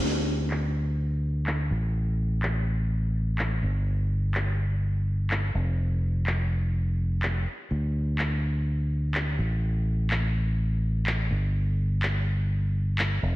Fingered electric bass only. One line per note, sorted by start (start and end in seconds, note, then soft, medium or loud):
0.03 1.69 D2 medium
1.71 3.61 A1 medium
3.63 5.53 G1 medium
5.55 7.45 F1 medium
7.71 9.37 D2 medium
9.39 11.29 A1 medium
11.31 13.21 G1 medium
13.23 13.36 F1 medium